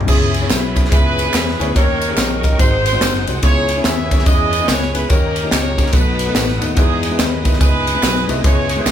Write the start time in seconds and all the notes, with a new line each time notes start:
0.01 floor tom
0.06 C#2 C#3 B3 C#4 E4 G#4 C#5 E5 B5, kick, crash, tambourine
0.34 ride, tambourine
0.41 B3 C#4 E4 G#4 C#5
0.49 B1 E4 G#4 B4, snare, clap, ride, tambourine
0.75 B3 C#4 E4 G#4 E5, kick, ride, tambourine
0.85 snare
0.89 C#2 B3 C#4 E4 G#4 B4 E5, kick, ride, tambourine
1.18 ride, tambourine
1.24 B3 C#4 E4 G#4 B4
1.33 E2, snare, clap, ride, tambourine
1.48 snare
1.59 D2 B3 C#4 E4 G#4 C#5, ride, tambourine
1.74 D#2 D#3 A#3 C#4 D#4 G4 A#4 C#5 D#5 G5 C#6, kick, ride, tambourine
2.01 ride, tambourine
2.08 A#3 C#4 D#4 G4 G#4 C#5
2.17 A#1, snare, clap, ride, tambourine
2.42 A#3 C#4 D#4 G4 A#4 D#5, kick, ride, tambourine
2.58 G#1 G#2 G#3 C4 D#4 F#4 C5 F#5 G#5 D#6, kick, ride, tambourine
2.86 D#4 F#4 C5, ride, tambourine
2.92 G#3 C4 D#4 F#4 C5
3.01 F#1, snare, clap, ride, tambourine
3.14 snare
3.26 C2 G#3 C4 D#4 F#4 C5, ride, tambourine
3.42 C#2 C#3 B3 C#4 E4 G#4 C#5 G#5 B5, kick, ride, tambourine
3.68 ride, tambourine
3.76 B3 C#4 E4 G#4 C#5
3.84 D#2 G#4 B4 E5, snare, clap, ride, tambourine
4.10 B3 C#4 E4 G#4 C#5, kick, ride, tambourine
4.19 snare
4.25 E2 B3 C#4 E4 G#4 B4 D#5, kick, ride, tambourine
4.53 ride, tambourine
4.59 B3 C#4 E4 G#4 D#5
4.68 C#2 C#5, snare, clap, ride, tambourine
4.82 snare
4.93 B3 C#4 E4 G#4 B4, ride, tambourine
5.09 D#2 D#3 A#3 C#4 D#4 G4 A#4 C#5 G5 A#5 D#6, kick, ride, tambourine
5.36 ride, tambourine
5.43 A#3 C#4 D#4 G4 D#5
5.51 C#2 G4 A#4 C#5, snare, clap, ride, tambourine
5.77 A#3 C#4 D#4 G4 A#4, kick, ride, tambourine
5.86 snare
5.91 B1 B2 A3 B3 D#4 F#4 B4 F#5 A5, kick, ride, tambourine
6.19 ride, tambourine
6.26 A3 B3 D#4 F#4 B4
6.35 A1, snare, clap, ride, tambourine
6.48 snare
6.60 D#2 A3 B3 D#4 F#4 B4, ride, tambourine
6.75 E2 E3 G#3 B3 D#4 E4 G#4 B4 D#5 G#5, kick, ride, tambourine
7.03 ride, tambourine
7.09 G#3 B3 D#4 E4 B4
7.19 D#2 D#4 G#4 B4, snare, clap, ride, tambourine
7.44 G#3 B3 D#4 E4 B4, kick, ride, tambourine
7.53 snare
7.59 C#2 G#3 B3 D#4 E4 G#4 B4, kick, ride, tambourine
7.87 ride, tambourine
7.95 G#3 B3 D#4 E4 B4
8.03 B1, snare, clap, ride, tambourine
8.16 snare
8.28 C2 G#3 B3 D#4 E4 B4, ride, tambourine
8.42 C#2 C#3 G#3 B3 C#4 E4 G#4 B4 C#5 C#6, kick, ride, tambourine
8.69 ride, tambourine
8.76 G#3 B3 C#4 E4 G#4 B4
8.86 B1, snare, clap, ride, tambourine